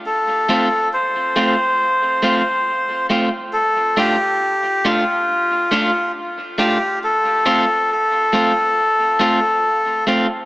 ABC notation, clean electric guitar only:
X:1
M:4/4
L:1/8
Q:"Swing 16ths" 1/4=69
K:F
V:1 name="Clean electric guitar"
z [A,CF] z [A,CF] z [A,CF] z [A,CF] | z [A,DF] z [A,DF] z [A,DF] z [A,DF] | z [A,CF] z [A,CF] z [A,CF] z [A,CF] |]